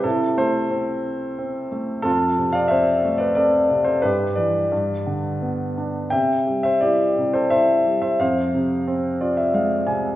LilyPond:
<<
  \new Staff \with { instrumentName = "Grand piano" } { \time 3/4 \key f \lydian \tempo 4 = 90 << { r2. | r2. | r2. | r2. |
r4. d''16 e''16 f''8 aes''8 | } \\ { <e' a'>8 <a' c''>2 r8 | <f' a'>8. <d'' f''>16 <c'' e''>8. <b' d''>16 <a' d''>8. <a' c''>16 | <g' b'>8 <b' d''>2 r8 | <e'' g''>8. <c'' e''>16 <g' d''>8. <a' c''>16 <c'' e''>8. <c'' e''>16 |
<c'' f''>2~ <c'' f''>8 r8 | } >> }
  \new Staff \with { instrumentName = "Grand piano" } { \clef bass \time 3/4 \key f \lydian c8 a8 c'4 c'8 a8 | f,8 c8 c'8 a8 c'8 c8 | g,8 e8 g,8 d8 b8 d'8 | c8 g8 e'8 c8 e'8 g8 |
f,8 c8 c'8 f'8 aes8 c8 | }
>>